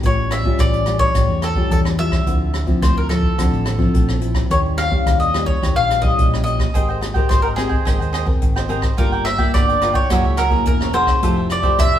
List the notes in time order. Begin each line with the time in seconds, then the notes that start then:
0.03 A1 A2 G3 C#4 F4 C#5, kick, closed hi-hat
0.31 E5, cross-stick, closed hi-hat
0.44 G3 C#4 F4, kick
0.59 A1 E3 D5, kick, cross-stick, closed hi-hat
0.74 closed hi-hat
0.86 G3 C#4 F4, cross-stick, closed hi-hat
0.99 C#5, kick
1.14 A1 A2 G3 C#4 F4, kick, cross-stick, closed hi-hat
1.29 E2
1.42 A4, cross-stick, closed hi-hat
1.55 G3 C#4 F4, kick
1.71 E2 E3 A4, kick, closed hi-hat
1.85 cross-stick
1.98 G3 C#4 F4 E5, closed hi-hat
2.11 kick, cross-stick
2.26 D2 D3 F3 C4 E4, kick, closed hi-hat
2.54 cross-stick, closed hi-hat
2.66 F3 C4 E4, kick, closed hi-hat
2.82 D2 A2 C5, kick, cross-stick, closed hi-hat
2.98 A#4
3.09 F3 C4 E4 A4, cross-stick, closed hi-hat
3.23 kick
3.38 D2 D3 F3 C4 E4, kick, cross-stick, closed hi-hat
3.52 A1, closed hi-hat
3.65 cross-stick, closed hi-hat
3.78 F3 C4 E4, kick
3.94 A#1 A2, kick, closed hi-hat
4.08 cross-stick
4.21 F3 C4 E4, closed hi-hat
4.35 kick, cross-stick
4.50 D#2 D#3 G3 C#4 E4 C#5, kick, closed hi-hat
4.77 F5, cross-stick, closed hi-hat
4.91 G3 C#4 E4, kick
5.06 D#2 A#2, kick, cross-stick, closed hi-hat
5.20 D#5, closed hi-hat
5.34 G3 C#4 E4, cross-stick, closed hi-hat
5.46 C#5, kick
5.62 D#2 D#3 G3 C#4 E4, kick, cross-stick, closed hi-hat
5.76 A#1 F5
5.90 cross-stick, closed hi-hat
6.02 G3 C#4 E4 D#5, kick
6.18 A#1 A#2, kick, closed hi-hat
6.33 cross-stick
6.44 G3 C#4 E4 D#5, closed hi-hat
6.59 kick, cross-stick
6.74 G#1 G#3 C4 G4 G#4 A#4 C5 D#5 G5, kick, closed hi-hat
6.88 C5 D#5 G5
7.01 muted cavaquinho stroke, cross-stick, closed hi-hat
7.14 C4 G4 A#4 C5 D#5 G5, kick, closed hi-hat
7.29 G#1 D#3 C5, kick, cross-stick, closed hi-hat
7.42 A#4 C5 D#5 G5
7.56 C4 G4 G#4 A#4 C5 D#5 G5, cross-stick, closed hi-hat
7.69 C5 D#5 G5, kick
7.85 G#1 G#3 C4 G#4 A#4 C5 D#5 G5, kick, cross-stick, closed hi-hat
8.00 D#2 C5 D#5 G5, closed hi-hat
8.13 G#4 C5 D#5 G5, cross-stick, closed hi-hat
8.26 C4 A#4, muted cavaquinho stroke, kick
8.42 G#1 D#3, kick, closed hi-hat
8.56 C5 D#5 G5, cross-stick
8.68 C4 G4 G#4 A#4 C5 D#5 G5, closed hi-hat
8.82 C5 D#5 G5, kick, cross-stick
8.97 G1 G3 A#3 F4 A4 A#4 D5 G5, kick, closed hi-hat
9.12 A#4 D5 G5
9.25 E5, muted cavaquinho stroke, cross-stick, closed hi-hat
9.38 A#3 F4 A4 A#4 D5 G5, kick
9.54 G1 D3 D5, kick, cross-stick, closed hi-hat
9.69 A#4 D5 G5, closed hi-hat
9.81 A#3 F4 A4 A#4 D5 G5, cross-stick, closed hi-hat
9.94 A#4 C#5 D5 G5, kick
10.10 F#1 F#3 A#3 E4 F#4 G#4 A#4 C#5 E5, kick, cross-stick, closed hi-hat
10.25 C#2 A#4 C#5 E5
10.37 F#4 A#4 C#5 E5, cross-stick, closed hi-hat
10.50 A#3 E4 G#4, muted cavaquinho stroke, kick
10.65 E1 C#3 A#4, kick, closed hi-hat
10.81 A#4 C#5 E5, cross-stick
10.93 A#3 E4 F#4 G#4 A#4 C5 C#5 E5, closed hi-hat
11.07 A#4 C#5 E5, kick, cross-stick
11.22 F1 F3 A3 E4 F4 G4 A4 C5 E5, kick, closed hi-hat
11.36 A4 C5 E5
11.49 D5, muted cavaquinho stroke, cross-stick, closed hi-hat
11.62 A3 E4 G4 A4 C5 E5, kick, closed hi-hat
11.78 F1 C3 E5, kick, cross-stick, closed hi-hat
11.93 A4 C5 E5